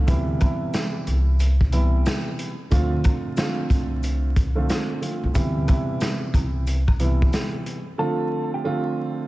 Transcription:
0.07 upright bass D2, grand piano C3 E3 G3 B3 E4, kick, closed hi-hat, maracas
0.39 grand piano C3 E3 G3 B3 E4, kick, closed hi-hat, high woodblock, maracas
0.73 snare, closed hi-hat, maracas
1.07 upright bass C2, closed hi-hat, maracas
1.40 closed hi-hat, maracas
1.61 kick
1.72 grand piano C3 E3 G3 B3 E4, closed hi-hat, maracas
2.06 snare, closed hi-hat, maracas
2.39 closed hi-hat, maracas
2.70 upright bass D2, grand piano D3 F3 A3 C4 F4, kick, closed hi-hat, maracas
3.04 kick, closed hi-hat, high woodblock, maracas
3.37 grand piano D3 F3 A3 C4 F4, snare, closed hi-hat, maracas
3.70 upright bass C2, kick, closed hi-hat, maracas
4.03 closed hi-hat, maracas
4.36 kick, closed hi-hat, maracas
4.55 grand piano D3 F3 A3 C4 F4
4.69 snare, closed hi-hat, maracas
5.00 grand piano D3 F3 A3 C4 F4, closed hi-hat, maracas
5.24 upright bass C2
5.34 upright bass D2, grand piano C3 E3 G3 B3 E4, kick, closed hi-hat, maracas
5.67 grand piano C3 E3 G3 B3 E4, kick, closed hi-hat, high woodblock, maracas
6.01 snare, closed hi-hat, maracas
6.34 upright bass C2, kick, closed hi-hat, high woodblock, maracas
6.67 closed hi-hat, maracas
6.88 kick, high woodblock
7.00 grand piano C3 E3 G3 B3 E4, closed hi-hat, maracas
7.22 kick
7.33 snare, closed hi-hat, maracas
7.66 closed hi-hat, maracas
7.98 grand piano D3 F3 A3 C4 F4, clean electric guitar A4 A5
8.54 clean electric guitar G4 G5
8.64 grand piano D3 F3 A3 C4 F4

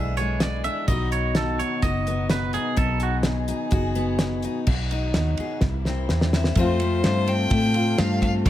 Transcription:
Already playing: fingered electric bass B1, steel-string acoustic guitar B2 G#3 D4 G#4, string section D3 E3 G#3 B3 E4, clean electric guitar E5
0.17 steel-string acoustic guitar G#3, clean electric guitar C#5, closed hi-hat
0.40 steel-string acoustic guitar E3, clean electric guitar D5, snare, closed hi-hat
0.64 steel-string acoustic guitar D4, clean electric guitar E5, closed hi-hat
0.88 fingered electric bass B1, steel-string acoustic guitar B2 D#3 B3 D#4 F#4, string section B2 D#3 F#3 D#4 F#4, clean electric guitar D#5, kick, closed hi-hat
1.12 clean electric guitar C#5, closed hi-hat
1.35 steel-string acoustic guitar D#3, clean electric guitar A4, snare, closed hi-hat
1.59 steel-string acoustic guitar D#4, clean electric guitar C#5, closed hi-hat
1.82 fingered electric bass F#1, steel-string acoustic guitar F#2 F#4, clean electric guitar D#5, kick, closed hi-hat
2.07 steel-string acoustic guitar B3, closed hi-hat
2.30 steel-string acoustic guitar D#3, clean electric guitar B4, snare, closed hi-hat
2.53 steel-string acoustic guitar D#4, clean electric guitar G#4, closed hi-hat
2.77 fingered electric bass B1, steel-string acoustic guitar B2 B3, string section G#4, clean electric guitar A4, kick, closed hi-hat
3.00 clean electric guitar F#4, closed hi-hat
3.23 steel-string acoustic guitar D#3, snare, closed hi-hat
3.48 steel-string acoustic guitar D#4, closed hi-hat
3.71 fingered electric bass F#1, steel-string acoustic guitar F#2 F#4, kick, closed hi-hat
3.95 steel-string acoustic guitar B3, closed hi-hat
4.19 steel-string acoustic guitar D#3, snare, closed hi-hat
4.42 steel-string acoustic guitar D#4, closed hi-hat
4.67 fingered electric bass B1, string section B2 D#3 F#3 D#4 F#4, steel-string acoustic guitar B2, kick, crash
4.91 steel-string acoustic guitar D#4, ride
5.14 fingered electric bass D#2, steel-string acoustic guitar D#3, snare, ride
5.37 steel-string acoustic guitar G#4, muted fingered electric bass stroke, ride
5.61 fingered electric bass C2, steel-string acoustic guitar C3, string section C3 E3 G3 A#3 E4, kick, snare
5.85 steel-string acoustic guitar C4, snare
6.09 fingered electric bass E2, steel-string acoustic guitar E3, snare
6.21 snare
6.33 steel-string acoustic guitar E4, snare
6.44 snare
6.55 fingered electric bass F2, steel-string acoustic guitar F2 F3 A3 C4, string section C3 A3 F4 A4, fiddle C5, kick, ride
6.60 steel-string acoustic guitar F4
6.80 steel-string acoustic guitar A3, ride
7.04 fingered electric bass G2, steel-string acoustic guitar F3, snare, ride
7.27 steel-string acoustic guitar C4, fiddle G5, ride
7.50 fingered electric bass A2, steel-string acoustic guitar C3 A3, kick, ride
7.74 steel-string acoustic guitar F4, ride
7.98 fingered electric bass G2, steel-string acoustic guitar F3 C4, fiddle F5, snare, ride
8.22 fiddle F5, kick, ride
8.45 fingered electric bass F2, steel-string acoustic guitar F2, fiddle D5, kick, ride

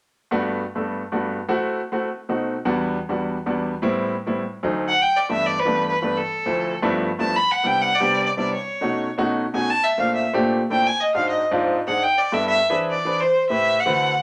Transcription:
0.31 grand piano G2 A3 B3 D4 F#4
0.75 grand piano G2 A3 B3 D4 A4
1.12 grand piano G2 A3 B3 D4 F#4
1.49 grand piano A3 C4 E4 F#4
1.92 grand piano A3 C4 E4 F#4
2.29 grand piano B2 A3 C4 D#4 F#4
2.65 grand piano E2 G3 B3 D4 F#4
3.09 grand piano E2 G3 B3 D4 F#4
3.46 grand piano E2 G3 B3 D4 F#4
3.82 grand piano A2 G3 B3 C4 E4
4.26 grand piano A2 G3 B3 C4 E4
4.63 grand piano D2 F#3 A3 C4 D#4
4.88 violin F#5
5.02 violin G5
5.17 violin D5
5.29 grand piano G2 E3 A3 B3 D4, violin E5
5.46 violin D5
5.60 violin B4
5.65 grand piano G2 E3 A3 B3 D4
5.89 violin B4
6.02 grand piano G2 E3 A3 B3 D4, violin B4
6.17 violin A4
6.46 grand piano D2 F3 A3 C4 E4
6.82 grand piano G2 F3 A3 B3 D4 E4
7.18 grand piano G2 F3 A3 B3 D4 E4, violin A5
7.36 violin B5
7.51 violin F#5
7.63 grand piano C3 G3 B3 D4 E4, violin G5
7.81 violin F#5
7.95 violin D5
8.00 grand piano C3 G3 B3 D4 G4
8.26 violin D5
8.37 grand piano C3 G3 B3 D4 E4, violin D5
8.55 violin C#5
8.81 grand piano B2 A3 C#4 D#4 F#4
9.18 grand piano B2 A3 C#4 D#4 F#4
9.54 grand piano B2 A3 C#4 D#4 F#4, violin G#5
9.70 violin A5
9.84 violin E5
9.98 grand piano A#2 A3 C4 D4 F4, violin F5
10.15 violin E5
10.33 grand piano A#2 A3 C4 D4 G4
10.70 grand piano A#2 A3 C4 D4 E4, violin G5
10.87 violin G#5
11.01 violin D#5
11.14 grand piano G#2 C4 D4 D#4 F#4, violin F5
11.30 violin D#5
11.51 grand piano G#2 C4 D4 D#4 F4
11.87 grand piano G#2 C4 D4 D#4 G#4, violin F#5
12.03 violin G5
12.18 violin D5
12.32 grand piano G2 B3 D4 E4 A4, violin E5
12.47 violin E5
12.69 grand piano E3 C4 D4 G#4 B4
12.91 violin D5
13.05 grand piano E3 C4 D4 G#4 B4
13.21 violin C5
13.50 grand piano A2 C4 E4 G4 B4, violin E5
13.80 violin F#5
13.86 grand piano D3 A3 C4 E4 F#4 B4

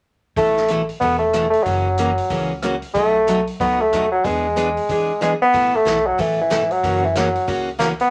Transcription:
0.36 upright bass A1, steel-string acoustic guitar B2 E3 A3 E4 A4, bassoon A3, kick, open hi-hat
0.57 snare
0.68 steel-string acoustic guitar B2 E3 A3 E4 A4, closed hi-hat
0.89 open hi-hat
1.00 upright bass E1, steel-string acoustic guitar B2 E3 A3 E4 A4, bassoon B3, kick, open hi-hat
1.19 bassoon A3
1.33 steel-string acoustic guitar B2 E3 A3 E4 A4, cross-stick, closed hi-hat
1.50 bassoon A3, open hi-hat
1.63 upright bass F#1, steel-string acoustic guitar C#3 E3 A#3 C#4 F#4, bassoon F#3, kick, open hi-hat
1.98 steel-string acoustic guitar C#3 E3 A#3 C#4 F#4, closed hi-hat
2.18 open hi-hat
2.30 upright bass C#2, steel-string acoustic guitar C#3 E3 A#3 C#4 F#4, kick, open hi-hat
2.62 steel-string acoustic guitar C#3 E3 A#3 C#4 F#4, cross-stick, closed hi-hat
2.82 open hi-hat
2.94 upright bass B1, steel-string acoustic guitar B2 F#3 A3 D#4 F#4, bassoon A3, kick, open hi-hat
3.27 steel-string acoustic guitar B2 F#3 A3 D#4 F#4, closed hi-hat
3.47 open hi-hat
3.60 upright bass C#2, steel-string acoustic guitar B2 F#3 A3 D#4 F#4, bassoon B3, kick, open hi-hat
3.81 bassoon A3
3.92 upright bass D#2, steel-string acoustic guitar B2 F#3 A3 D#4 F#4, cross-stick, closed hi-hat
4.12 bassoon F#3
4.24 upright bass E2, steel-string acoustic guitar E3 B3 D4 G#4, bassoon G#3, kick, open hi-hat
4.56 steel-string acoustic guitar E3 B3 D4 G#4, closed hi-hat
4.77 open hi-hat
4.89 steel-string acoustic guitar E3 B3 D4 G#4, kick, open hi-hat
5.21 steel-string acoustic guitar E3 B3 D4 G#4, bassoon G#3, cross-stick, closed hi-hat
5.42 bassoon B3
5.53 upright bass A1, steel-string acoustic guitar B2 E3 A3 E4 A4, kick, open hi-hat
5.75 bassoon A3
5.85 upright bass B1, steel-string acoustic guitar B2 E3 A3 E4 A4, snare, closed hi-hat
6.06 bassoon F#3
6.18 upright bass A1, steel-string acoustic guitar B2 E3 A3 E4 A4, bassoon E3, kick, open hi-hat
6.41 bassoon E3
6.50 upright bass G#1, steel-string acoustic guitar B2 E3 A3 E4 A4, snare, closed hi-hat
6.71 bassoon F#3, open hi-hat
6.83 upright bass F#1, steel-string acoustic guitar C#3 E3 A#3 C#4 F#4, kick, open hi-hat
7.04 bassoon E3
7.15 steel-string acoustic guitar C#3 E3 A#3 C#4 F#4, bassoon F#3, snare, closed hi-hat
7.35 open hi-hat
7.47 upright bass C#2, steel-string acoustic guitar C#3 E3 A#3 C#4 F#4, kick, open hi-hat
7.79 steel-string acoustic guitar C#3 E3 A#3 C#4 F#4, bassoon A#3, snare, closed hi-hat
8.00 bassoon B3, open hi-hat

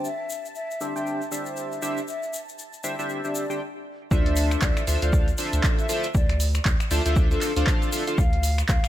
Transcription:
Already playing: analog synth pad A5
0.05 flute E5, shaker
0.30 shaker
0.45 shaker
0.55 flute E5, shaker
0.71 shaker
0.81 analog polysynth D4 G4 C5 E5, shaker
0.96 analog polysynth D4 G4 C5 G5, flute E5, shaker
1.07 shaker
1.22 shaker
1.31 analog polysynth D4 G4 C5 E5, shaker
1.46 shaker
1.57 shaker
1.72 flute E5, shaker
1.82 analog polysynth D4 G4 C5 E5, shaker
1.97 shaker
2.08 flute E5, shaker
2.23 shaker
2.33 shaker
2.49 shaker
2.59 shaker
2.73 shaker
2.84 analog polysynth D4 G4 C5 E5, shaker
2.99 analog polysynth D4 G4 C5 E5, shaker
3.09 shaker
3.24 analog polysynth D4 G4 C5 E5, flute D5, shaker
3.35 shaker
3.50 analog polysynth D4 G4 C5 G5, shaker
4.11 analog synth bass D2, analog polysynth D4 F4 A4 C5 E5, flute D5, kick, shaker
4.26 closed hi-hat
4.36 open hi-hat, shaker
4.51 finger snap, closed hi-hat, shaker
4.62 analog synth bass D2, flute D5, kick, clap, shaker
4.77 finger snap, closed hi-hat, shaker
4.87 analog synth bass D2, analog polysynth D4 F4 A4 C5 E5, open hi-hat, shaker
5.02 analog synth bass D2, analog polysynth D4 F4 A4 C5 F5, flute D5, closed hi-hat, shaker
5.13 kick, shaker
5.28 closed hi-hat, shaker
5.38 analog polysynth D4 F4 A4 C5 E5, open hi-hat, shaker
5.53 analog synth bass D2, closed hi-hat, shaker
5.63 kick, clap, shaker
5.79 flute E5, closed hi-hat, shaker
5.89 analog polysynth D4 F4 A4 C5 E5, open hi-hat, shaker
6.03 closed hi-hat, shaker
6.15 analog synth bass D2, flute D5, kick, shaker
6.29 finger snap, closed hi-hat
6.40 open hi-hat, shaker
6.54 finger snap, closed hi-hat, shaker
6.65 analog synth bass D2, kick, clap, shaker
6.80 finger snap, closed hi-hat, shaker
6.91 analog synth bass D2, analog polysynth D4 F4 A4 C5 E5, open hi-hat, shaker
7.06 analog synth bass D2, analog polysynth D4 F4 A4 C5 E5, closed hi-hat, shaker
7.16 kick, shaker
7.31 analog polysynth D4 F4 A4 C5 E5, flute A4, closed hi-hat, shaker
7.41 clap, open hi-hat, shaker
7.56 analog synth bass D2, analog polysynth D4 F4 A4 C5 F5, closed hi-hat, shaker
7.67 kick, clap, shaker
7.82 closed hi-hat, shaker
7.92 analog polysynth D4 F4 A4 C5 E5, open hi-hat, shaker
8.07 analog polysynth D4 F4 A4 C5 F5, closed hi-hat, shaker
8.18 analog synth bass D2, flute F5, kick, shaker
8.33 closed hi-hat
8.43 open hi-hat, shaker
8.58 finger snap, closed hi-hat, shaker
8.69 analog synth bass D2, flute F5, kick, clap, shaker
8.84 finger snap, closed hi-hat, shaker

